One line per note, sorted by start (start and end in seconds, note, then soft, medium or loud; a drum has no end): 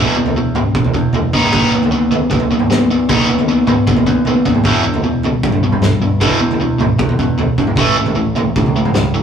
0.00 0.15 E2 medium
0.00 0.57 E2 loud
0.00 0.15 B2 loud
0.00 0.15 E3 medium
0.17 0.34 E2 medium
0.17 0.34 B2 medium
0.26 floor tom medium
0.36 0.54 E2 medium
0.36 0.54 B2 medium
0.55 0.73 E2 medium
0.55 0.73 B2 medium
0.55 floor tom medium
0.55 mid tom medium
0.75 0.90 E2 medium
0.75 0.93 E2 medium
0.75 0.93 B2 medium
0.75 kick loud
0.85 floor tom medium
0.94 1.12 E2 medium
0.94 1.34 E2 medium
0.94 1.12 B2 medium
0.94 kick medium
1.13 1.32 E2 medium
1.13 1.32 B2 medium
1.13 floor tom medium
1.33 1.48 D#2 medium
1.33 1.52 D#3 medium
1.33 1.52 B3 medium
1.33 1.53 D#4 loud
1.33 kick medium
1.44 mid tom medium
1.53 2.13 D#2 loud
1.53 1.71 D#3 medium
1.53 1.72 B3 medium
1.53 1.72 D#4 loud
1.53 kick loud
1.53 floor tom medium
1.73 1.90 D#3 medium
1.73 1.91 B3 medium
1.83 floor tom medium
1.91 2.09 D#3 medium
1.91 2.10 B3 medium
2.11 2.29 D#3 medium
2.11 2.29 B3 medium
2.11 floor tom medium
2.30 2.91 D#2 medium
2.30 2.48 D#3 medium
2.30 2.49 B3 medium
2.30 kick loud
2.40 floor tom medium
2.51 2.68 D#3 medium
2.51 2.69 B3 medium
2.59 mid tom medium
2.70 2.88 D#3 medium
2.70 2.88 B3 medium
2.70 snare medium
2.70 floor tom medium
2.91 3.08 D#3 medium
2.91 3.08 B3 medium
3.09 3.69 D#2 loud
3.09 3.27 D#3 medium
3.09 3.28 B3 medium
3.09 3.28 D#4 loud
3.09 kick loud
3.09 floor tom medium
3.29 3.46 D#3 medium
3.29 3.47 B3 medium
3.39 floor tom medium
3.48 3.66 D#3 medium
3.48 3.66 B3 medium
3.67 3.85 D#3 medium
3.67 3.85 B3 medium
3.67 floor tom medium
3.67 mid tom medium
3.87 4.03 D#2 medium
3.87 4.05 D#3 medium
3.87 4.05 B3 medium
3.87 kick loud
3.97 floor tom medium
4.06 4.37 D#2 medium
4.06 4.24 D#3 medium
4.06 4.24 B3 medium
4.06 kick medium
4.25 4.44 D#3 medium
4.25 4.44 B3 medium
4.25 floor tom medium
4.45 4.61 D#2 medium
4.45 4.63 D#3 medium
4.45 4.63 B3 medium
4.45 kick medium
4.55 mid tom medium
4.64 4.83 E2 medium
4.64 5.25 E2 loud
4.64 4.83 B2 medium
4.64 4.84 E3 medium
4.64 kick loud
4.64 floor tom medium
4.84 5.02 E2 medium
4.84 5.02 B2 medium
4.94 floor tom medium
5.04 5.22 E2 medium
5.04 5.22 B2 medium
5.23 5.42 E2 medium
5.23 5.42 B2 medium
5.23 floor tom medium
5.43 5.61 E2 medium
5.43 6.23 G2 medium
5.43 5.61 B2 medium
5.43 kick loud
5.52 floor tom medium
5.63 5.80 E2 medium
5.63 5.81 B2 medium
5.72 mid tom medium
5.82 6.00 E2 medium
5.82 6.00 B2 medium
5.82 snare medium
5.82 floor tom medium
6.01 6.19 E2 medium
6.01 6.19 B2 medium
6.20 6.39 E2 medium
6.20 6.81 E2 loud
6.20 6.39 B2 medium
6.20 6.40 E3 loud
6.20 kick loud
6.20 floor tom medium
6.40 6.58 E2 medium
6.40 6.58 B2 medium
6.51 floor tom medium
6.60 6.77 E2 medium
6.60 6.77 B2 medium
6.78 6.97 E2 medium
6.78 6.97 B2 medium
6.78 floor tom medium
6.78 mid tom medium
6.98 7.17 E2 medium
6.98 7.14 E2 medium
6.98 7.17 B2 medium
6.98 kick loud
7.09 floor tom medium
7.19 7.49 E2 medium
7.19 7.37 E2 medium
7.19 7.37 B2 medium
7.19 kick medium
7.38 7.56 E2 medium
7.38 7.56 B2 medium
7.38 floor tom medium
7.58 7.76 E2 medium
7.58 7.73 E2 medium
7.58 7.76 B2 medium
7.58 kick medium
7.67 mid tom medium
7.76 8.37 A1 loud
7.76 7.96 A2 medium
7.76 7.96 E3 loud
7.76 7.96 A3 loud
7.76 kick loud
7.76 floor tom medium
7.97 8.14 A2 medium
7.97 8.15 E3 medium
8.06 floor tom medium
8.16 8.34 A2 medium
8.16 8.34 E3 medium
8.36 8.54 A2 medium
8.36 8.54 E3 medium
8.36 floor tom medium
8.56 9.23 C#2 loud
8.56 8.73 A2 medium
8.56 8.74 E3 medium
8.56 kick loud
8.66 floor tom medium
8.76 8.93 A2 medium
8.76 8.93 E3 medium
8.85 mid tom medium
8.94 9.12 A2 medium
8.94 9.13 E3 medium
8.94 snare medium
8.94 floor tom medium
9.14 9.23 A2 medium
9.14 9.23 E3 medium